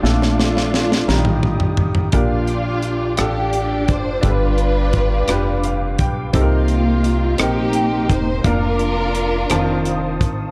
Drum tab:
HH |------------|x-x-x-x-x-x-|x-x-x-x-x-x-|x-x-x-x-x-x-|
SD |ooooooo-----|------r-----|------r-----|------r-----|
T2 |-------oo---|------------|------------|------------|
FT |---------ooo|------------|------------|------------|
BD |------------|o---------o-|o---o-----o-|o---------o-|

HH |x-x-x-x-x-x-|
SD |------r-----|
T2 |------------|
FT |------------|
BD |o---------o-|